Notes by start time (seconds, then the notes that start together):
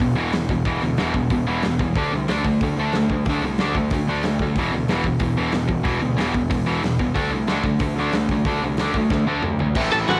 0.00 E1 E2 B2, kick, open hi-hat
0.16 E1 E2 B2 E3
0.33 E1 E2 B2, snare, open hi-hat
0.49 E1 E2 B2, kick
0.65 E1 E2 B2 E3, kick, open hi-hat
0.82 D2 E2 B2
0.97 E1 E2 B2 E3, snare, open hi-hat
1.14 E1 E2 B2, kick
1.30 E1 E2 B2, kick, open hi-hat
1.47 E1 E2 B2 E3
1.62 E1 E2 B2, snare, open hi-hat
1.79 E2 B2, kick
1.95 D2 D3 A3 D4, kick, open hi-hat
2.13 C2 D3 A3
2.28 D2 D3 A3 D4, snare, open hi-hat
2.45 D2 D3 A3, kick
2.61 D2 D3 A3, kick, open hi-hat
2.77 D2 D3 A3 D4
2.93 D2 D3 A3, snare, open hi-hat
2.97 A3
3.10 D2 D3 A3, kick
3.25 D2 D3, kick, open hi-hat
3.29 D3 A3 D4
3.42 C2 D3 A3
3.58 D2 D3 A3 D4, snare, open hi-hat
3.75 D2 D3 A3, kick
3.90 D2 D3 A3, kick, open hi-hat
4.08 D2 D3 A3 D4
4.23 D2 D3 A3, snare, open hi-hat
4.39 D2 D3 A3, kick
4.56 E1 E2 B2 E3, kick, open hi-hat
4.73 D2 E2 B2
4.88 E1 E2 B2 E3, snare, open hi-hat
5.04 E1 E2 B2, kick
5.20 E1 E2 B2, kick, open hi-hat
5.37 E1 E2 B2 E3
5.52 E1 E2 B2, snare, open hi-hat
5.68 E1 E2 B2, kick
5.84 E1 E2 B2 E3, kick, open hi-hat
6.01 D2 E2 B2
6.17 E1 E2 B2 E3, snare, open hi-hat
6.34 E1 E2 B2, kick
6.50 E1 E2 B2, kick, open hi-hat
6.66 E1 E2 B2 E3
6.82 E1 E2 B2, snare, open hi-hat
6.99 E2 B2, kick
7.14 D2 D3 A3 D4, kick, open hi-hat
7.30 C2 D3 A3
7.46 D2 D3 A3 D4, snare, open hi-hat
7.63 D2 D3 A3, kick
7.79 D2 D3 A3, kick, open hi-hat
7.95 D2 D3
7.99 A3 D4
8.12 D2 D3 A3, snare, open hi-hat
8.29 D2 D3 A3, kick
8.45 D2 D3 A3 D4, kick, open hi-hat
8.61 C2 D3 A3
8.77 D2 D3 A3, snare, open hi-hat
8.81 D4
8.94 D2 D3 A3, kick
9.10 D2 D3 A3, kick, snare
9.26 D2 D3 A3 D4
9.42 D2 D3 A3, mid tom
9.59 D2 D3 A3, floor tom
9.75 A1 A2 E3 A3 C4 E4, kick, crash
9.92 A1 A2 E3 A3 A4 A5
10.07 A1 A2 E3 A3 F#4 F#5, snare, crash